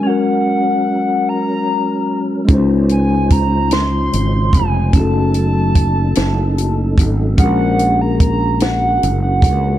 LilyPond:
<<
  \new Staff \with { instrumentName = "Soft synth lead" } { \time 6/8 \key ges \lydian \tempo 4. = 49 ges''4. bes''4 r8 | r8 aes''8 bes''8 c'''4 aes''8 | a''2~ a''8 r8 | fis''8. bes''16 bes''8 fis''8. fis''8. | }
  \new Staff \with { instrumentName = "Tine electric piano" } { \time 6/8 \key ges \lydian <aes des' ges' bes'>2. | <aes des' ees' fes' f' c''>2. | <a des' ees' ges' a'>2. | <aes cis' d' fis' bes'>2. | }
  \new Staff \with { instrumentName = "Tonewheel organ" } { \time 6/8 \key ges \lydian << { <ges bes'>2. | <des c''>2. | <ges a'>2. | <aes fis'>2. | } \\ { des'2. | ees'2.~ | ees'2. | bes2. | } >> }
  \new Staff \with { instrumentName = "Fretless electric bass" } { \clef bass \time 6/8 \key ges \lydian r2. | des,2 aes,,8 f,,8 | ges,,4. ges,,4 aes,,8 | bes,,2 fis,,8 cis,8 | }
  \new DrumStaff \with { instrumentName = "Drums" } \drummode { \time 6/8 r4. r4. | <hh bd>8 hh8 <hh bd>8 <hh sn>8 hh8 <hh bd>8 | <hh bd>8 hh8 <hh bd>8 <hh sn>8 hh8 <hh bd>8 | <hh bd>8 hh8 <hh bd>8 <hh sn>8 hh8 <hh bd>8 | }
>>